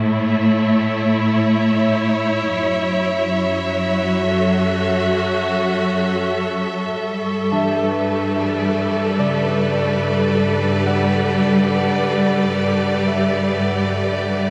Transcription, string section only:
0, 0, Header, 1, 2, 480
1, 0, Start_track
1, 0, Tempo, 1111111
1, 1087, Time_signature, 4, 2, 24, 8
1, 6264, End_track
2, 0, Start_track
2, 0, Title_t, "String section"
2, 0, Program_c, 0, 48
2, 0, Note_on_c, 0, 45, 83
2, 0, Note_on_c, 0, 57, 82
2, 0, Note_on_c, 0, 64, 71
2, 33, Note_on_c, 0, 76, 73
2, 35, Note_on_c, 0, 73, 73
2, 1083, Note_on_c, 0, 54, 72
2, 1086, Note_off_c, 0, 45, 0
2, 1090, Note_off_c, 0, 57, 0
2, 1591, Note_on_c, 0, 66, 82
2, 1846, Note_on_c, 0, 69, 72
2, 1856, Note_off_c, 0, 64, 0
2, 3005, Note_off_c, 0, 54, 0
2, 3005, Note_off_c, 0, 66, 0
2, 3009, Note_off_c, 0, 73, 0
2, 3012, Note_on_c, 0, 55, 86
2, 3186, Note_on_c, 0, 67, 73
2, 3334, Note_on_c, 0, 71, 68
2, 3597, Note_on_c, 0, 74, 68
2, 4544, Note_off_c, 0, 76, 0
2, 6264, Note_off_c, 0, 55, 0
2, 6264, Note_off_c, 0, 67, 0
2, 6264, Note_off_c, 0, 69, 0
2, 6264, Note_off_c, 0, 71, 0
2, 6264, Note_off_c, 0, 74, 0
2, 6264, End_track
0, 0, End_of_file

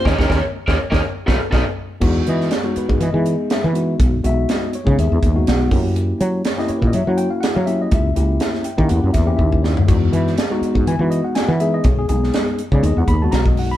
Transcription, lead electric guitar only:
0, 0, Header, 1, 2, 480
1, 0, Start_track
1, 0, Tempo, 491803
1, 53, Time_signature, 4, 2, 24, 8
1, 13440, End_track
2, 0, Start_track
2, 0, Title_t, "Lead electric guitar"
2, 0, Program_c, 0, 29
2, 63, Note_on_c, 0, 70, 77
2, 64, Note_on_c, 0, 73, 72
2, 69, Note_on_c, 0, 75, 82
2, 141, Note_off_c, 0, 73, 0
2, 143, Note_off_c, 0, 70, 0
2, 146, Note_off_c, 0, 75, 0
2, 196, Note_on_c, 0, 73, 75
2, 201, Note_on_c, 0, 70, 70
2, 205, Note_on_c, 0, 75, 64
2, 261, Note_off_c, 0, 73, 0
2, 265, Note_off_c, 0, 75, 0
2, 266, Note_off_c, 0, 70, 0
2, 285, Note_on_c, 0, 70, 83
2, 292, Note_on_c, 0, 75, 70
2, 296, Note_on_c, 0, 73, 83
2, 373, Note_off_c, 0, 70, 0
2, 374, Note_off_c, 0, 75, 0
2, 378, Note_off_c, 0, 73, 0
2, 661, Note_on_c, 0, 70, 78
2, 665, Note_on_c, 0, 73, 85
2, 673, Note_on_c, 0, 75, 74
2, 733, Note_off_c, 0, 70, 0
2, 736, Note_off_c, 0, 73, 0
2, 738, Note_off_c, 0, 75, 0
2, 890, Note_on_c, 0, 73, 72
2, 896, Note_on_c, 0, 70, 74
2, 897, Note_on_c, 0, 75, 76
2, 968, Note_off_c, 0, 73, 0
2, 968, Note_off_c, 0, 75, 0
2, 970, Note_off_c, 0, 70, 0
2, 1244, Note_on_c, 0, 71, 88
2, 1248, Note_on_c, 0, 69, 82
2, 1253, Note_on_c, 0, 75, 68
2, 1332, Note_off_c, 0, 71, 0
2, 1335, Note_off_c, 0, 75, 0
2, 1336, Note_off_c, 0, 69, 0
2, 1486, Note_on_c, 0, 69, 81
2, 1492, Note_on_c, 0, 71, 82
2, 1497, Note_on_c, 0, 75, 85
2, 1574, Note_off_c, 0, 69, 0
2, 1578, Note_off_c, 0, 71, 0
2, 1578, Note_off_c, 0, 75, 0
2, 13440, End_track
0, 0, End_of_file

